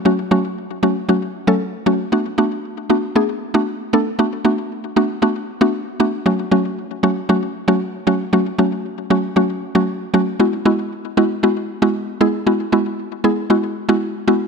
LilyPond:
\new Staff \with { instrumentName = "Synth pluck" } { \time 4/4 \key fis \minor \tempo 4 = 116 <fis a cis' fis'>16 r16 <fis a cis' fis'>8. r16 <fis a cis' fis'>16 r16 <fis a cis' fis'>8 r16 <fis a cis' a'>8 r16 <fis a cis' fis'>16 r16 | <a b d' fis'>16 r16 <a b d' fis'>8. r16 <a b d' fis'>16 r16 <a b d' gis'>8 r16 <a b d' fis'>8 r16 <a b d' a'>16 r16 | <a b d' fis'>16 r16 <a b d' fis'>8. r16 <a b d' fis'>16 r16 <a b d' fis'>8 r16 <a b d' fis'>8 r16 <a b d' fis'>16 r16 | <fis a cis' fis'>16 r16 <fis a cis' fis'>8. r16 <fis a cis' fis'>16 r16 <fis a cis' fis'>8 r16 <fis a cis' fis'>8 r16 <fis a cis' fis'>16 r16 |
<fis a cis' fis'>16 r16 <fis a cis' fis'>8. r16 <fis a cis' fis'>16 r16 <fis a cis' fis'>8 r16 <fis a cis' fis'>8 r16 <fis a cis' fis'>16 r16 | <gis b e' fis'>16 r16 <gis b e' fis'>8. r16 <gis b e' fis'>16 r16 <gis b e' fis'>8 r16 <gis b e' fis'>8 r16 <gis b e' gis'>16 r16 | <gis b e' fis'>16 r16 <gis b e' fis'>8. r16 <gis b e' gis'>16 r16 <gis b e' fis'>8 r16 <gis b e' fis'>8 r16 <gis b e' fis'>16 r16 | }